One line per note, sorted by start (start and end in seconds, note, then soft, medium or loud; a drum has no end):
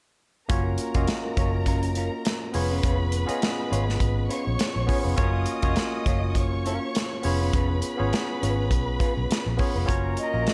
0.49 0.76 F#1 medium
0.49 0.77 A#3 medium
0.49 0.71 C#4 medium
0.49 0.77 C#4 medium
0.49 0.78 F4 medium
0.49 0.65 F4 medium
0.49 0.78 F#4 medium
0.49 2.50 A#4 medium
0.49 0.64 A#4 medium
0.49 0.78 C#5 medium
0.49 2.50 A#5 medium
0.49 kick medium
0.49 closed hi-hat medium
0.65 muted clean electric guitar stroke soft
0.78 muted clean electric guitar stroke soft
0.78 closed hi-hat medium
0.94 1.07 F1 medium
0.94 1.68 A#3 medium
0.94 1.69 C#4 medium
0.94 1.07 C#4 soft
0.94 1.69 F4 medium
0.94 1.08 F4 soft
0.94 1.69 F#4 medium
0.94 1.09 C#5 soft
0.94 1.69 D#5 medium
0.94 kick medium
0.94 closed hi-hat soft
1.07 snare loud
1.07 closed hi-hat medium
1.25 muted clean electric guitar stroke soft
1.37 2.08 F#1 medium
1.37 1.59 C#4 medium
1.37 1.53 F4 medium
1.37 1.54 C#5 medium
1.37 kick medium
1.37 closed hi-hat medium
1.54 muted clean electric guitar stroke soft
1.66 1.88 C#4 medium
1.66 1.82 F4 medium
1.66 1.81 A#4 medium
1.66 kick medium
1.66 closed hi-hat medium
1.82 muted clean electric guitar stroke soft
1.82 closed hi-hat soft
1.95 2.13 C#4 soft
1.95 2.12 F4 medium
1.95 2.11 A#4 medium
1.95 closed hi-hat medium
2.12 muted clean electric guitar stroke soft
2.25 muted clean electric guitar stroke soft
2.25 snare loud
2.25 closed hi-hat medium
2.42 muted clean electric guitar stroke soft
2.53 2.81 F1 medium
2.53 3.12 B3 medium
2.53 3.13 C#4 medium
2.53 2.71 C#4 medium
2.53 3.13 F4 medium
2.53 2.70 F4 medium
2.53 3.13 G#4 medium
2.53 4.27 B4 medium
2.53 2.70 B4 medium
2.53 3.13 C#5 medium
2.53 4.26 B5 medium
2.53 open hi-hat medium
2.71 2.83 C#4 soft
2.71 2.84 F4 medium
2.71 2.85 B4 soft
2.83 3.24 F1 loud
2.83 3.05 C#4 medium
2.83 3.00 F4 medium
2.83 2.98 B4 medium
2.83 kick medium
2.83 closed hi-hat medium
3.00 muted clean electric guitar stroke soft
3.12 muted clean electric guitar stroke soft
3.12 closed hi-hat medium
3.26 4.01 B3 medium
3.26 4.02 C#4 medium
3.26 3.41 C#4 soft
3.26 4.02 F4 medium
3.26 3.41 F4 soft
3.26 4.02 G#4 medium
3.26 3.43 C#5 soft
3.26 4.03 D#5 medium
3.26 muted fingered electric bass stroke soft
3.26 closed hi-hat soft
3.42 muted clean electric guitar stroke soft
3.42 snare loud
3.42 closed hi-hat medium
3.58 muted clean electric guitar stroke soft
3.71 3.98 G#1 medium
3.71 3.93 C#4 medium
3.71 3.86 F4 medium
3.71 3.87 C#5 medium
3.71 closed hi-hat medium
3.87 muted clean electric guitar stroke soft
3.87 snare soft
4.00 4.27 G#1 medium
4.00 kick medium
4.00 closed hi-hat medium
4.17 muted clean electric guitar stroke soft
4.29 4.51 C#4 medium
4.29 4.46 F4 medium
4.29 4.44 B4 medium
4.29 5.17 C#5 medium
4.29 5.17 C#6 medium
4.29 closed hi-hat medium
4.46 4.59 A#1 medium
4.46 muted clean electric guitar stroke soft
4.59 muted clean electric guitar stroke soft
4.59 snare loud
4.59 closed hi-hat medium
4.75 4.88 A#1 medium
4.75 muted clean electric guitar stroke soft
4.87 5.07 B3 medium
4.87 5.08 C#4 medium
4.87 5.04 C#4 soft
4.87 5.08 F4 medium
4.87 5.03 F4 medium
4.87 5.08 G#4 medium
4.87 5.03 B4 medium
4.87 5.09 C#5 medium
4.87 kick medium
4.87 open hi-hat medium
5.04 5.17 F1 medium
5.04 5.16 C#4 soft
5.04 5.17 F4 medium
5.04 5.18 B4 medium
5.16 5.45 F#1 loud
5.16 5.46 A#3 medium
5.16 5.46 C#4 medium
5.16 5.40 C#4 medium
5.16 5.46 F4 medium
5.16 5.34 F4 medium
5.16 5.46 F#4 medium
5.16 5.33 A#4 medium
5.16 5.46 C#5 loud
5.16 6.34 D#5 medium
5.16 kick medium
5.16 closed hi-hat medium
5.20 6.35 D#6 medium
5.34 muted clean electric guitar stroke soft
5.46 muted clean electric guitar stroke soft
5.46 closed hi-hat medium
5.62 5.76 F1 medium
5.62 6.37 A#3 medium
5.62 6.37 C#4 medium
5.62 5.75 C#4 soft
5.62 6.38 F4 medium
5.62 5.75 F4 soft
5.62 6.38 F#4 medium
5.62 5.77 C#5 soft
5.62 6.38 C#5 medium
5.62 kick medium
5.62 closed hi-hat soft
5.76 muted clean electric guitar stroke soft
5.76 snare loud
5.76 closed hi-hat medium
5.93 muted clean electric guitar stroke soft
6.06 6.77 F#1 medium
6.06 6.28 C#4 medium
6.06 6.23 F4 medium
6.06 6.22 C#5 medium
6.06 kick medium
6.06 closed hi-hat medium
6.23 muted clean electric guitar stroke soft
6.35 7.23 C#5 medium
6.35 7.23 C#6 medium
6.35 kick medium
6.35 closed hi-hat medium
6.53 muted clean electric guitar stroke soft
6.66 6.87 C#4 medium
6.66 6.81 F4 medium
6.66 6.80 A#4 medium
6.66 closed hi-hat medium
6.81 muted clean electric guitar stroke soft
6.95 muted clean electric guitar stroke soft
6.95 snare loud
6.95 closed hi-hat medium
7.12 muted clean electric guitar stroke soft
7.22 7.51 F1 medium
7.22 7.82 B3 medium
7.22 7.82 C#4 medium
7.22 7.41 C#4 soft
7.22 7.83 F4 medium
7.22 7.41 F4 medium
7.22 7.83 G#4 medium
7.22 9.85 B4 medium
7.22 7.40 B4 medium
7.22 7.83 C#5 medium
7.22 9.85 B5 medium
7.22 open hi-hat medium
7.41 7.53 C#4 soft
7.41 7.54 F4 medium
7.41 7.54 B4 medium
7.53 7.80 F1 medium
7.53 7.75 C#4 medium
7.53 7.71 F4 medium
7.53 7.70 B4 medium
7.53 kick medium
7.53 closed hi-hat medium
7.71 muted clean electric guitar stroke soft
7.82 muted clean electric guitar stroke soft
7.82 closed hi-hat medium
7.97 8.11 G#1 medium
7.97 8.72 B3 medium
7.97 8.72 C#4 medium
7.97 8.12 C#4 soft
7.97 8.72 F4 medium
7.97 8.12 F4 soft
7.97 8.73 G#4 medium
7.97 8.73 C#5 medium
7.97 8.14 C#5 soft
8.13 snare loud
8.13 closed hi-hat medium
8.29 muted clean electric guitar stroke soft
8.42 8.71 G#1 medium
8.42 8.63 C#4 medium
8.42 8.57 F4 medium
8.42 8.57 C#5 medium
8.42 closed hi-hat medium
8.58 muted clean electric guitar stroke soft
8.71 8.97 B1 medium
8.71 kick medium
8.71 closed hi-hat medium
8.87 muted clean electric guitar stroke soft
9.00 9.21 C#4 medium
9.00 9.15 F4 medium
9.00 9.15 B4 medium
9.00 kick medium
9.00 closed hi-hat medium
9.16 9.29 B1 medium
9.16 muted clean electric guitar stroke soft
9.30 muted clean electric guitar stroke soft
9.30 muted fingered electric bass stroke soft
9.30 snare loud
9.30 closed hi-hat medium
9.46 9.58 A#1 medium
9.46 muted clean electric guitar stroke soft
9.57 9.78 B3 medium
9.57 9.78 C#4 medium
9.57 9.76 C#4 soft
9.57 9.78 F4 medium
9.57 9.76 F4 medium
9.57 9.79 G#4 medium
9.57 9.75 B4 medium
9.57 9.79 C#5 medium
9.57 kick medium
9.57 open hi-hat medium
9.75 9.87 F1 medium
9.75 9.91 C#4 soft
9.75 9.91 F4 soft
9.75 9.91 B4 soft
9.85 10.15 F#1 medium
9.85 10.15 A#3 medium
9.85 10.15 C#4 medium
9.85 10.16 F4 medium
9.85 10.16 F#4 medium
9.85 10.54 A#4 medium
9.85 10.16 C#5 loud
9.85 10.54 A#5 medium
9.85 kick medium
9.85 closed hi-hat medium
10.17 10.54 D#5 medium
10.17 closed hi-hat medium
10.33 10.46 A#1 medium
10.33 10.54 A#3 medium
10.33 10.54 C#4 medium
10.33 10.54 F4 soft
10.33 10.54 F#4 medium
10.33 10.54 A#4 medium
10.47 snare medium
10.47 closed hi-hat medium